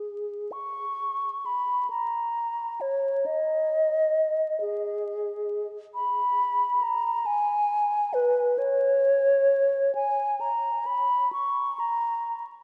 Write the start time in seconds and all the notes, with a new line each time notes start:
Already playing: G#4
0.52 C#6
1.46 B5
1.90 A#5
2.81 C#5
3.26 D#5
4.61 G#4
5.94 B5
6.82 A#5
7.26 G#5
8.14 B4
8.58 C#5
9.95 G#5
10.41 A#5
10.86 B5
11.33 C#6
11.79 A#5